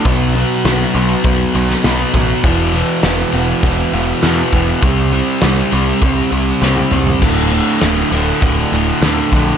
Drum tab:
CC |----------------|----------------|----------------|x---------------|
HH |o-o-o-o-o-o-o-o-|o-o-o-o-o-o-o-o-|o-o-o-o-o-o-----|--o-o-o-o-o-o-o-|
SD |----oo-----oo---|----oo------o---|----o-------o---|----o-------o---|
T1 |----------------|----------------|-------------o--|----------------|
T2 |----------------|----------------|--------------o-|----------------|
FT |----------------|----------------|---------------o|----------------|
BD |o-------o-----o-|o-------o-----o-|o-------o-------|o-------o-----o-|